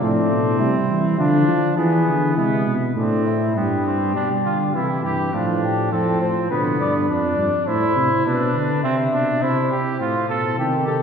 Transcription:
0.01 A2 A3 C4 D4
0.31 B2
0.59 C3 G3 E4
0.89 E3
1.19 D3 F3 D4 F4
1.48 F3
1.78 E3 B3 G#4
2.07 D3
2.36 C3 G#3 B3 E4
2.66 B2
2.96 A2 A3 C4 D4
3.26 E4
3.56 G2 G3 B3 G4
3.86 C4
4.15 B2 G3 D4
4.45 D3 F4
4.74 C3 E3 E4 G4
4.82 A4
4.89 G4
5.04 G2 G4
5.34 A2 F3 D4 F4
5.64 G4
5.92 F2 F3 C4 A4
6.21 A2 C5
6.50 B2 D3 B3 B4
6.80 G2 D5
7.09 F2 D4 D5
7.38 G2
7.67 A2 E4 C5
7.96 C3
8.25 B2 D4 B4
8.55 D3
8.83 C3 C4 E5
9.13 B2 D4
9.42 C3 E4 C5
9.71 G4
10.00 A2 F4 C5
10.29 B2 A4
10.58 C3 D#3 G4
10.87 C3 A4

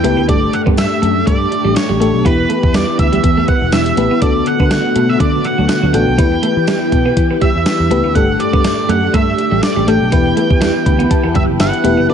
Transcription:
Already playing: E3 B3 E4 G4 B4 G5
0.04 C#2 A3 B3 E4 G4 B4, closed hi-hat
0.17 D2 B3
0.28 G1 G2 G3 A3 D4 G4 A4 D5, kick, closed hi-hat
0.53 F#5, muted clean electric guitar stroke, closed hi-hat
0.66 G2 B3, kick
0.77 E5, snare, closed hi-hat, tambourine
1.02 F#2 A3, closed hi-hat
1.27 G2 A3 D5, kick, closed hi-hat
1.52 muted clean electric guitar stroke, closed hi-hat
1.65 A1 G3
1.76 C#5, muted clean electric guitar stroke, snare, closed hi-hat, tambourine
1.89 A1 G3
2.00 A1 A3 D4 G4 A4, closed hi-hat
2.14 B1
2.25 E1 E3 B3 E4 G4 B4, kick, closed hi-hat
2.38 muted clean electric guitar stroke
2.49 A3, closed hi-hat
2.63 E2, kick
2.74 G3 D5, snare, closed hi-hat, tambourine
2.88 muted clean electric guitar stroke
2.99 D2 E5, kick, closed hi-hat
3.12 G3, closed hi-hat
3.24 E2, muted clean electric guitar stroke, kick, closed hi-hat
3.37 A3
3.48 B3 F#5, kick, closed hi-hat
3.62 E1
3.72 E1 E5, muted clean electric guitar stroke, snare, closed hi-hat, tambourine
3.86 closed hi-hat
3.97 A1 A3 B3 E4 G4 B4, closed hi-hat
4.11 B3
4.22 D2 D3 A3 B3 D4 F#4 A4 D5, kick, closed hi-hat
4.46 F#5, muted clean electric guitar stroke, closed hi-hat
4.60 D3 B3, kick
4.71 F#5, snare, closed hi-hat, tambourine
4.96 B2 A3, closed hi-hat
5.09 E5
5.20 D3 A3 D5, kick, closed hi-hat
5.44 F#5, muted clean electric guitar stroke, closed hi-hat
5.58 D2 F#3
5.69 F#5, muted clean electric guitar stroke, snare, closed hi-hat, tambourine
5.83 D2 F#3
5.93 A1 A3 B3 D4 F#4 A4 G5, closed hi-hat
6.08 B1
6.18 E2 E3 B3 E4 G4 B4, kick, closed hi-hat
6.32 muted clean electric guitar stroke
6.43 A3, closed hi-hat
6.57 E3
6.67 G3, snare, closed hi-hat, tambourine
6.81 muted clean electric guitar stroke
6.92 B2, kick, closed hi-hat
7.06 B3
7.17 E3, muted clean electric guitar stroke, kick, closed hi-hat
7.31 B3
7.41 G3 E5, kick, closed hi-hat
7.55 E2
7.66 muted clean electric guitar stroke, snare, closed hi-hat, tambourine
7.80 E2
7.90 C#2 A3 B3 E4 G4 B4, closed hi-hat
8.04 D2 B3
8.15 G1 G2 G3 A3 D4 G4 A4 F#5, kick, closed hi-hat
8.40 D5, muted clean electric guitar stroke, closed hi-hat
8.53 G2 B3, kick
8.64 snare, closed hi-hat, tambourine
8.89 F#2 A3 F#5, closed hi-hat
9.14 G2 A3 E5, kick, closed hi-hat
9.38 muted clean electric guitar stroke, closed hi-hat
9.52 A1 G3
9.63 D5, muted clean electric guitar stroke, snare, closed hi-hat, tambourine
9.76 A1 G3
9.87 A1 A3 D4 G4 A4 G5, closed hi-hat
10.01 B1
10.12 E1 E3 B3 E4 G4 B4, kick, closed hi-hat
10.26 muted clean electric guitar stroke
10.37 A3, closed hi-hat
10.50 E2, kick
10.61 G3, snare, closed hi-hat, tambourine
10.74 muted clean electric guitar stroke
10.86 D2 B5, kick, closed hi-hat
10.99 B3, closed hi-hat
11.10 A5, muted clean electric guitar stroke, kick, closed hi-hat
11.24 E2 B3
11.35 F#1 G3 E5 G5, kick, closed hi-hat
11.49 F#1
11.60 G1 E5 F#5, muted clean electric guitar stroke, snare, closed hi-hat, tambourine
11.74 closed hi-hat
11.84 E1 A3 B3 E4 G4 B4, closed hi-hat
11.97 F#1 B3
12.09 D3 A3 B3 D4 F#4 A4 B4 D5

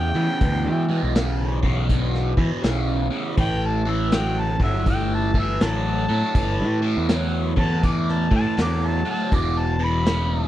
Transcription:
Already playing: E2 C#3 G5
0.15 E2 C#3 E3
0.41 D2 E2 B2, kick, open hi-hat
0.65 E3
0.89 E2 B2
1.03 B1
1.15 E2 C#3, snare, open hi-hat
1.63 B1 E2 C#3, kick
1.89 E2 B2, kick, open hi-hat
2.14 snare
2.37 E2 B2 E3, kick
2.62 B1 E2 C#3, snare, open hi-hat
3.10 E2 C#3
3.37 A1 A2 E3 G5, kick, open hi-hat
3.66 A5
3.86 A2 E3
3.90 E5
4.12 A2 F#3, snare, open hi-hat
4.16 G5
4.40 A5
4.60 G1 A2 F#3, kick
4.64 E5
4.86 A2 E3 G5, kick, open hi-hat
5.14 A5
5.34 A2 E3, kick
5.40 E5
5.60 A1 A2 F#3 A5, snare, open hi-hat
6.08 A2 F#3
6.35 G1 A2 E3, kick, open hi-hat
6.60 A2
6.82 A2 E3
6.97 E2
7.09 A2 F#3, snare, open hi-hat
7.56 E2 A2 F#3 A5, kick
7.83 A2 E3 D6, kick, open hi-hat
8.08 A5, snare
8.31 A2 E3, kick
8.36 A5
8.57 E2 A2 F#3, snare, open hi-hat
8.62 D6
8.86 A5
9.05 A2 F#3
9.11 A5
9.31 E1 E2 B2, kick, open hi-hat
9.35 D6
9.59 A5
9.79 E2 B2
9.84 B5
10.06 E2 C#3, snare, open hi-hat

